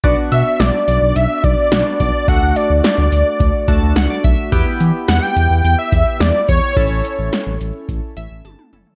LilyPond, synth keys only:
\new Staff \with { instrumentName = "Synth keys" } { \time 4/4 \key b \minor \tempo 4 = 107 << { r1 | r2 r8 a''8 fis''16 d''16 e''8 | r1 | r2 r8 e''8 a''4 | } \\ { <b d' fis'>2. <b d' fis'>4 | <a d' fis'>2~ <a d' fis'>8 <a d' fis'>4. | <b e' g'>1 | <cis' e' a'>2.~ <cis' e' a'>8 <cis' e' a'>8 | } >> }